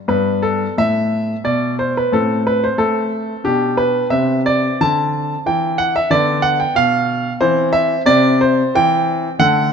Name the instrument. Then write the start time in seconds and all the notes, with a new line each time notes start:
grand piano
0.08 G2 B3 B4
0.43 A4
0.78 A2 E5
1.44 B2 D5
1.79 C5
1.97 B4
2.12 A2 C4 A4
2.47 B4
2.64 C5
2.78 A3 A4
3.44 B2 D4 G4
3.77 B4
4.10 C3 C4 E5
4.46 D5
4.81 D3 A5
5.46 E3 G5
5.78 F#5
5.96 E5
6.10 D3 B3 D5
6.42 F#5
6.60 G5
6.75 B2 F5
7.40 E3 C4 C5
7.73 E5
8.06 C3 C4 D5
8.41 C5
8.75 E3 G5
9.39 D3 A3 F#5